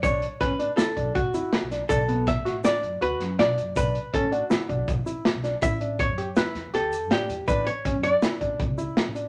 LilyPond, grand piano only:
\new Staff \with { instrumentName = "Grand piano" } { \time 5/4 \key b \minor \tempo 4 = 161 d'4 cis'8 d'8 e'8 d'4 e'4 d'8 | d'8 b4 fis'8 d'4 fis'4 d'4 | d'4 cis'8 d'8 e'8 d'4 e'4 d'8 | e'8 d'4 g'8 e'4 g'4 d'4 |
d'4 cis'8 d'8 e'8 d'4 e'4 d'8 | }